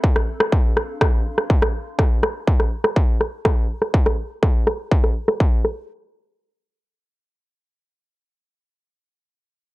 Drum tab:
SD |-r-r--r-r--r-r--|r-r--r-r--r-r--r|-r--r-r--r-r--r-|----------------|
BD |o---o---o---o---|o---o---o---o---|o---o---o---o---|----------------|

SD |----------------|
BD |----------------|